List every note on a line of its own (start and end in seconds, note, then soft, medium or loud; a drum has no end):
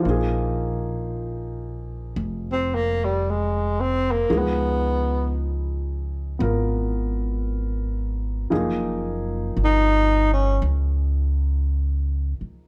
0.00 4.25 F3 medium
0.00 4.27 A#3 soft
0.00 0.15 C5 soft
0.05 2.13 A#1 medium
0.05 4.29 D#4 soft
0.10 4.29 G#4 medium
2.16 4.24 F1 medium
2.52 2.76 C4 medium
2.75 3.06 A#3 medium
3.04 3.31 G3 medium
3.30 3.82 G#3 medium
3.81 4.13 C4 medium
4.11 4.40 A#3 medium
4.30 6.36 C#2 medium
4.30 8.49 F3 soft
4.30 8.52 G#3 soft
4.30 8.49 D#4 soft
4.30 8.50 G#4 soft
4.38 5.39 B3 medium
6.39 8.47 G#1 medium
6.39 8.50 B3 soft
6.39 8.51 F4 soft
6.39 8.52 A#4 soft
8.50 9.53 F#1 medium
8.50 12.68 F3 medium
8.50 12.68 A#3 soft
8.50 12.68 D#4 soft
8.50 12.68 G#4 medium
9.57 10.58 G1 medium
9.64 10.28 D#4 medium
10.33 10.62 C#4 medium
10.62 12.35 C#2 medium
12.41 muted upright bass stroke soft